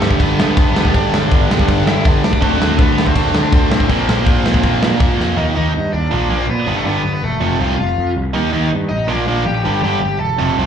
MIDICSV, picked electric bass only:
0, 0, Header, 1, 2, 480
1, 0, Start_track
1, 0, Tempo, 370142
1, 1222, Time_signature, 4, 2, 24, 8
1, 13825, End_track
2, 0, Start_track
2, 0, Title_t, "Picked electric bass"
2, 0, Program_c, 0, 34
2, 16, Note_on_c, 0, 31, 98
2, 232, Note_off_c, 0, 31, 0
2, 260, Note_on_c, 0, 31, 98
2, 474, Note_off_c, 0, 31, 0
2, 506, Note_on_c, 0, 43, 97
2, 717, Note_off_c, 0, 43, 0
2, 737, Note_on_c, 0, 31, 91
2, 952, Note_off_c, 0, 31, 0
2, 980, Note_on_c, 0, 38, 90
2, 1193, Note_off_c, 0, 38, 0
2, 1220, Note_on_c, 0, 31, 94
2, 1432, Note_off_c, 0, 31, 0
2, 1464, Note_on_c, 0, 31, 94
2, 1675, Note_off_c, 0, 31, 0
2, 1707, Note_on_c, 0, 31, 94
2, 1916, Note_off_c, 0, 31, 0
2, 1944, Note_on_c, 0, 31, 99
2, 2154, Note_off_c, 0, 31, 0
2, 2183, Note_on_c, 0, 31, 99
2, 2393, Note_off_c, 0, 31, 0
2, 2433, Note_on_c, 0, 43, 94
2, 2638, Note_off_c, 0, 43, 0
2, 2665, Note_on_c, 0, 31, 101
2, 2874, Note_off_c, 0, 31, 0
2, 2904, Note_on_c, 0, 38, 101
2, 3113, Note_off_c, 0, 38, 0
2, 3143, Note_on_c, 0, 38, 91
2, 3352, Note_off_c, 0, 38, 0
2, 3385, Note_on_c, 0, 38, 100
2, 3593, Note_off_c, 0, 38, 0
2, 3616, Note_on_c, 0, 38, 93
2, 3828, Note_off_c, 0, 38, 0
2, 3854, Note_on_c, 0, 38, 94
2, 4066, Note_off_c, 0, 38, 0
2, 4094, Note_on_c, 0, 38, 104
2, 4306, Note_off_c, 0, 38, 0
2, 4321, Note_on_c, 0, 50, 100
2, 4538, Note_off_c, 0, 50, 0
2, 4570, Note_on_c, 0, 38, 97
2, 4783, Note_off_c, 0, 38, 0
2, 4805, Note_on_c, 0, 45, 96
2, 5020, Note_off_c, 0, 45, 0
2, 5048, Note_on_c, 0, 34, 95
2, 5262, Note_off_c, 0, 34, 0
2, 5303, Note_on_c, 0, 34, 96
2, 5510, Note_off_c, 0, 34, 0
2, 5531, Note_on_c, 0, 34, 95
2, 5743, Note_off_c, 0, 34, 0
2, 5781, Note_on_c, 0, 34, 103
2, 5989, Note_off_c, 0, 34, 0
2, 6012, Note_on_c, 0, 34, 96
2, 6223, Note_off_c, 0, 34, 0
2, 6270, Note_on_c, 0, 46, 91
2, 6474, Note_off_c, 0, 46, 0
2, 6489, Note_on_c, 0, 34, 96
2, 6702, Note_off_c, 0, 34, 0
2, 6741, Note_on_c, 0, 41, 90
2, 6949, Note_off_c, 0, 41, 0
2, 6977, Note_on_c, 0, 39, 86
2, 7178, Note_off_c, 0, 39, 0
2, 7228, Note_on_c, 0, 39, 91
2, 7424, Note_off_c, 0, 39, 0
2, 7460, Note_on_c, 0, 43, 83
2, 7660, Note_off_c, 0, 43, 0
2, 7701, Note_on_c, 0, 39, 86
2, 7900, Note_off_c, 0, 39, 0
2, 7945, Note_on_c, 0, 34, 91
2, 8143, Note_off_c, 0, 34, 0
2, 8184, Note_on_c, 0, 34, 89
2, 8383, Note_off_c, 0, 34, 0
2, 8422, Note_on_c, 0, 46, 90
2, 8622, Note_off_c, 0, 46, 0
2, 8656, Note_on_c, 0, 31, 85
2, 8859, Note_off_c, 0, 31, 0
2, 8896, Note_on_c, 0, 31, 92
2, 9099, Note_off_c, 0, 31, 0
2, 9139, Note_on_c, 0, 31, 90
2, 9341, Note_off_c, 0, 31, 0
2, 9378, Note_on_c, 0, 28, 88
2, 9580, Note_off_c, 0, 28, 0
2, 9610, Note_on_c, 0, 29, 92
2, 9816, Note_off_c, 0, 29, 0
2, 9851, Note_on_c, 0, 36, 91
2, 10057, Note_off_c, 0, 36, 0
2, 10100, Note_on_c, 0, 29, 93
2, 10302, Note_off_c, 0, 29, 0
2, 10348, Note_on_c, 0, 41, 93
2, 10548, Note_off_c, 0, 41, 0
2, 10588, Note_on_c, 0, 36, 89
2, 10788, Note_off_c, 0, 36, 0
2, 10829, Note_on_c, 0, 39, 89
2, 11029, Note_off_c, 0, 39, 0
2, 11068, Note_on_c, 0, 39, 91
2, 11269, Note_off_c, 0, 39, 0
2, 11315, Note_on_c, 0, 43, 90
2, 11513, Note_off_c, 0, 43, 0
2, 11557, Note_on_c, 0, 33, 89
2, 11754, Note_off_c, 0, 33, 0
2, 11788, Note_on_c, 0, 34, 90
2, 11989, Note_off_c, 0, 34, 0
2, 12031, Note_on_c, 0, 34, 91
2, 12232, Note_off_c, 0, 34, 0
2, 12270, Note_on_c, 0, 33, 92
2, 12471, Note_off_c, 0, 33, 0
2, 12519, Note_on_c, 0, 31, 80
2, 12717, Note_off_c, 0, 31, 0
2, 12759, Note_on_c, 0, 31, 89
2, 12957, Note_off_c, 0, 31, 0
2, 12994, Note_on_c, 0, 31, 85
2, 13194, Note_off_c, 0, 31, 0
2, 13234, Note_on_c, 0, 28, 87
2, 13474, Note_off_c, 0, 28, 0
2, 13474, Note_on_c, 0, 29, 85
2, 13675, Note_off_c, 0, 29, 0
2, 13712, Note_on_c, 0, 36, 84
2, 13825, Note_off_c, 0, 36, 0
2, 13825, End_track
0, 0, End_of_file